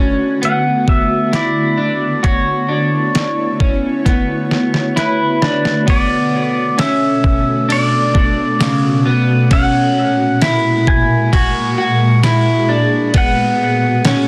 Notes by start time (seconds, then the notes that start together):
Already playing: D3 A3 B3 C#4 F#4
0.42 B3 F#5, closed hi-hat
0.88 E5, kick
1.33 E4 D5, snare, closed hi-hat
1.77 D4
2.23 E4 F#4 C#5, kick, closed hi-hat
2.69 D4
3.15 snare, closed hi-hat
3.60 C#4, kick
4.05 B3 F#4, kick, snare, closed hi-hat
4.51 snare
4.74 snare
4.96 E4 B4, snare, closed hi-hat
5.42 D4, snare
5.65 snare
5.87 B2 A3 B3 F#4 A4 D5, kick, ride
6.78 C#4 E5, snare, ride, tambourine
7.24 kick
7.69 D4 D5, ride
8.14 D4, kick
8.60 C#3, snare, ride, tambourine
9.06 B3
9.50 A#2 G#3 A#3 C#4 A#4 F#5, kick, ride
10.42 E4, snare, ride, tambourine
10.87 G#5, kick
11.33 F#4 G#4, kick, ride
11.78 F#4
12.23 E4, snare, ride, tambourine
12.69 D4
13.14 B2 A3 B3 B4 F#5, kick, ride
14.05 C#4, snare, ride, tambourine